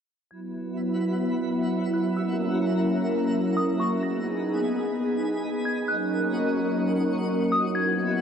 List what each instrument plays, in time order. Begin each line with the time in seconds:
0.31 analog synth pad F#3 B3 E4, synth texture F#4 E5 B5, synth bell G#6
1.94 synth bell F#6
2.17 analog synth pad A#3 C#4 A#4, synth texture A#5, synth bell E6
3.57 synth bell D#6
3.80 synth bell C#6
4.03 analog synth pad B3 D#4 G#4, synth texture G#4 D#5 B5, synth bell A#6
5.65 synth bell G#6
5.88 analog synth pad F#3 A#3 C#4 A#4, synth texture F#4 C#6, synth bell F#6
7.52 synth bell D#6
7.75 analog synth pad B3 E4, synth texture E5 B5, synth bell G#6